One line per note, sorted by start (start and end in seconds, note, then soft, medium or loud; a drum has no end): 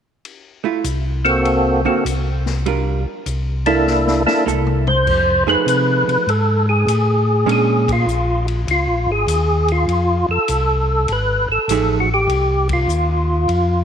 0.25 ride soft
0.64 0.82 A3 soft
0.64 0.83 E4 soft
0.64 0.83 F4 soft
0.84 1.85 C2 medium
0.84 hi-hat pedal medium
0.84 ride medium
1.25 1.81 A#3 medium
1.25 1.82 C4 medium
1.25 1.82 F#4 medium
1.25 1.81 A4 medium
1.25 ride soft
1.45 ride soft
1.85 2.03 D3 soft
1.85 2.04 A#3 soft
1.85 2.04 A#3 medium
1.85 2.04 C4 medium
1.85 2.04 F#4 medium
1.85 2.04 A4 medium
1.85 kick soft
2.05 3.06 C2 medium
2.05 hi-hat pedal medium
2.05 ride medium
2.46 snare soft
2.66 3.02 G3 soft
2.66 3.03 D4 soft
2.66 3.03 F4 soft
2.66 3.03 A#4 medium
2.66 ride soft
3.26 4.27 C2 medium
3.26 hi-hat pedal medium
3.26 ride soft
3.66 3.85 A#3 soft
3.66 4.23 A#3 medium
3.66 4.23 D4 medium
3.66 4.23 E4 medium
3.66 3.85 E4 medium
3.66 4.23 A4 medium
3.66 3.85 A4 medium
3.66 ride medium
3.87 snare soft
4.07 snare soft
4.26 4.45 A#3 soft
4.26 4.45 D4 soft
4.26 4.45 E4 soft
4.26 4.45 A4 medium
4.26 snare medium
4.46 5.47 C2 medium
4.46 4.83 A#3 soft
4.46 4.83 E4 medium
4.46 4.84 A4 medium
4.46 hi-hat pedal medium
4.46 mid tom soft
4.67 mid tom soft
4.87 5.44 C5 loud
4.87 mid tom medium
5.07 5.45 F2 medium
5.07 kick medium
5.07 crash medium
5.47 5.57 F2 soft
5.47 6.23 F3 medium
5.47 6.24 A3 medium
5.47 6.24 D#4 medium
5.47 6.24 G#4 medium
5.47 6.31 B4 loud
5.66 6.04 C3 medium
5.66 hi-hat pedal medium
5.66 ride medium
6.08 6.18 C3 soft
6.08 ride soft
6.27 6.85 G#2 medium
6.27 6.66 A4 medium
6.27 ride soft
6.69 7.51 G#4 medium
6.87 7.46 A2 medium
6.87 hi-hat pedal medium
6.87 ride medium
7.46 8.06 A#2 medium
7.46 7.83 G#3 medium
7.46 7.84 C#4 medium
7.46 7.84 D4 medium
7.46 ride medium
7.52 7.91 G#4 medium
7.88 kick medium
7.88 ride medium
7.92 8.46 F4 medium
8.06 8.65 A#1 medium
8.06 hi-hat pedal soft
8.48 ride soft
8.67 8.87 C#2 medium
8.67 9.11 F4 medium
8.67 ride medium
8.87 9.08 A#1 medium
9.07 9.26 G#1 medium
9.12 9.72 G#4 medium
9.27 9.86 D#2 medium
9.27 hi-hat pedal medium
9.27 ride medium
9.68 10.26 F4 medium
9.68 ride soft
9.88 10.26 F2 medium
9.88 ride soft
10.29 10.39 F2 soft
10.29 11.12 A4 medium
10.48 11.07 C2 medium
10.48 hi-hat pedal soft
10.48 ride medium
11.08 11.46 G#1 medium
11.08 ride soft
11.13 11.48 B4 medium
11.49 11.59 G#1 soft
11.49 11.98 A4 medium
11.68 12.27 A1 medium
11.68 12.06 F3 soft
11.68 12.06 A3 medium
11.68 12.07 D#4 soft
11.68 12.07 G#4 medium
11.68 hi-hat pedal medium
11.68 ride medium
12.00 12.09 F#4 medium
12.14 12.68 G4 medium
12.28 12.87 C2 medium
12.28 ride medium
12.69 kick medium
12.69 ride medium
12.73 13.84 F4 medium
12.87 13.47 D#2 medium
12.87 hi-hat pedal soft
13.48 13.84 F2 medium
13.48 ride soft